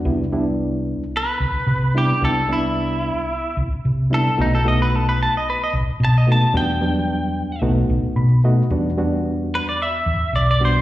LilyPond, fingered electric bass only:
\new Staff \with { instrumentName = "Fingered electric bass" } { \clef bass \time 4/4 \key e \minor \tempo 4 = 111 c,2 r8 c,16 r16 c4 | c,2 r8 c,16 r16 c4 | b,,2 r8 b,,16 r16 b,4 | e,2 b,,8 b,,16 r16 b,4 |
e,2 r8 e,16 r16 b,,4 | }